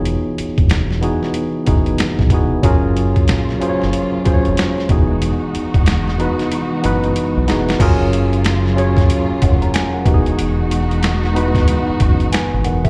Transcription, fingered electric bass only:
Already playing: E1
0.40 muted fingered electric bass stroke
0.59 E1
1.69 F#1
2.20 B1
2.31 E1
2.64 F#1
3.30 A#1
3.83 F#1
4.27 muted fingered electric bass stroke
4.48 F1
4.90 E1
5.56 muted fingered electric bass stroke
5.75 E1
6.85 F#1
7.37 B1
7.49 E1
7.81 F#1
9.31 muted fingered electric bass stroke
9.43 F1
10.07 E1
10.40 E1
11.90 muted fingered electric bass stroke
12.01 F#1
12.54 G#1
12.66 E1

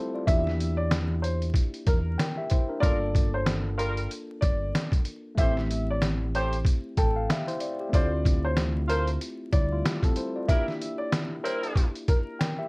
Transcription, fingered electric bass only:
0.27 E2
1.87 E2
2.83 G1
4.42 G1
5.38 A1
6.98 A1
7.93 D2
9.53 D2

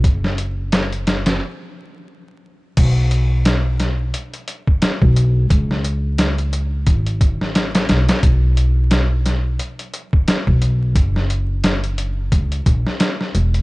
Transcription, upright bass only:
0.04 F#1
2.77 B1
5.02 B1
5.50 C#2
6.87 G#1
7.89 B1
8.23 B1
10.47 B1
10.95 F#1
12.32 C#2
12.66 A#1
13.35 E1

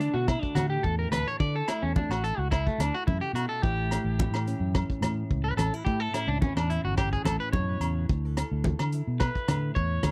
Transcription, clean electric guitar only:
0.00 D4
0.14 F#4
0.27 E4
0.42 D4
0.55 F#4
0.70 G4
0.83 A4
0.99 A#4
1.12 B4
1.28 C#5
1.40 D5
1.56 A4
1.68 E4
1.82 C#4
1.96 D4
2.11 F#4
2.24 A4
2.39 F#4
2.51 E4
2.67 A3
2.80 D4
2.94 F#4
3.07 E4
3.21 G4
3.35 F#4
3.49 A4
3.62 G4
5.44 B4
5.57 A4
5.85 G4
6.00 A4
6.13 E4
6.28 D4
6.42 C#4
6.57 D4
6.70 E4
6.85 F#4
6.98 G4
7.13 G#4
7.25 A4
7.40 B4
7.53 C#5
9.20 B4
9.75 C#5

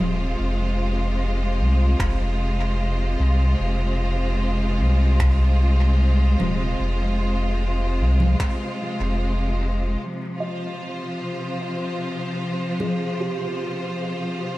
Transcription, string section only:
Already playing: C3 G#3 F4 C5
10.00 C3
10.06 F3
10.37 F4 C5

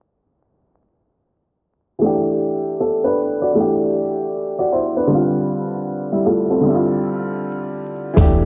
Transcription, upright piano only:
1.99 E3 A3
2.04 D4 G4
2.80 A4
3.04 D4 B4
3.42 F#4 D5
3.53 E3 A3
3.58 D4 G4
4.59 F#4 D5
4.72 E4 C5
4.97 D4 B4
5.07 D3 G3
5.12 C4 F4
6.12 G3 E4
6.25 A3 F4
6.50 C4 A4
6.60 D3 G3
6.65 C4 E4
6.74 F4
8.13 E3 A3
8.18 D4 G4

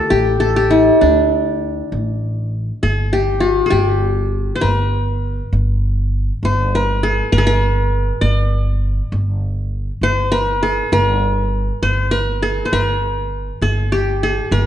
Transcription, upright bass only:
0.12 A1
1.02 D2
1.92 A1
2.83 G1
3.72 G1
4.62 G1
5.53 G1
6.43 G1
7.33 G1
8.22 G1
9.12 G1
10.01 G1
10.92 G1
11.82 G1
12.73 G1
13.61 G1
14.51 G1

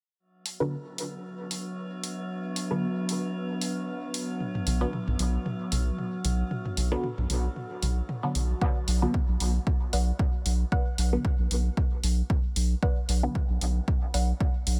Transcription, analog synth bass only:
4.67 B1
5.08 B1
5.19 B1
5.72 B1
6.25 B1
6.77 B1
7.18 B1
7.30 B1
7.83 B1
8.35 B1
8.88 B1
9.29 B1
9.41 B1
9.93 B1
10.46 B1
10.98 B1
11.39 B1
11.51 B1
12.04 B1
12.56 B1
13.09 B1
13.50 B1
13.62 B1
14.14 B1
14.67 B1

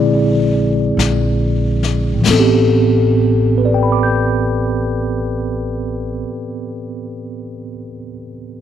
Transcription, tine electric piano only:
Already playing: D3 G#3 C4 E4 G#4 D5
2.14 A2
2.21 E3
2.27 B3 A4
2.33 C4
2.40 G4
3.58 B4
3.65 D5
3.74 G5
3.83 B5
3.92 D6
4.03 G6

